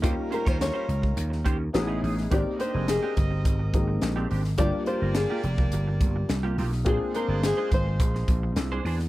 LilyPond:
<<
  \new Staff \with { instrumentName = "Nylon-string guitar" } { \time 4/4 \key aes \lydian \tempo 4 = 106 g'8 bes'16 c''16 des''2~ des''8 r8 | d''8 c''8 aes'8 g'2 r8 | d''8 c''8 aes'8 g'2 r8 | aes'8 bes'8 aes'8 c''2 r8 | }
  \new Staff \with { instrumentName = "Clean electric guitar" } { \time 4/4 \key aes \lydian <des' g' c''>16 r16 <des' g' c''>16 <des' g' des''>16 r16 <des' g' c''>16 r4 <des' g' c''>16 r8 <cis' dis' gis'>16 <cis' dis' gis'>16 r16 | <c' d' g'>16 r16 <c' d' g'>16 <c' d' aes'>16 r16 <c' d' g'>16 r4. r16 <c' d' g'>16 <c' d' g'>16 r16 | <bes f' g'>16 r16 <bes f' g'>16 <bes f' bes'>16 r16 <bes f' g'>16 r4. r16 <bes f' g'>16 <bes f' g'>16 r16 | <d' aes' c''>16 r16 <d' aes' c''>16 <d' aes' d''>16 r16 <d' aes' c''>16 r4. r16 <d' aes' c''>16 <d' aes' c''>16 r16 | }
  \new Staff \with { instrumentName = "Horn section" } { \time 4/4 \key aes \lydian <g f' bes'>2~ <g f' bes'>8 r8 <gis e' b'>8 r8 | <c' bes' ees''>2.~ <c' bes' ees''>8 r8 | <bes g' d''>2.~ <bes g' d''>8 r8 | <aes f' c''>2.~ <aes f' c''>8 r8 | }
  \new Staff \with { instrumentName = "Grand piano" } { \time 4/4 \key aes \lydian <bes des' ees' f' g'>2. <b cis' dis' e' gis'>4 | <bes c' ees' g'>2~ <bes c' ees' g'>8 <aes bes c' ees'>4. | <g bes d' f' g'>1 | <bes c' d' f' aes'>1 | }
  \new Staff \with { instrumentName = "Slap bass" } { \clef bass \time 4/4 \key aes \lydian ees,16 r8 ees,8 r16 des,8 ees,8 ees,8 a,,8 a,,8 | aes,,16 r8 f,,8 r16 g,,8 aes,,8 aes,,8 bes,,8 aes,,8 | g,,16 r8 g,,8 r16 f,,8 g,,8 g,,8 c,8 b,,8 | bes,,16 r8 g,,8 r16 aes,,8 bes,,8 bes,,8 c,8 e,8 | }
  \new DrumStaff \with { instrumentName = "Drums" } \drummode { \time 4/4 <hh bd>8 hh16 bd16 <hh sn>8 hh16 bd16 hh16 sn16 <hh bd>8 <hh sn>8 hho16 sn16 | <hh bd>8 hh8 <hh sn>8 <hh bd>8 <hh bd>8 <hh bd>8 <hh sn>8 hho16 sn16 | <hh bd>8 hh8 <hh sn>8 hh16 bd16 hh8 <hh bd>8 <hh sn>8 hho16 sn16 | <hh bd>8 hh8 <hh sn>8 <hh bd>8 <hh bd>16 sn16 <hh bd>8 <hh sn>8 hho16 sn16 | }
>>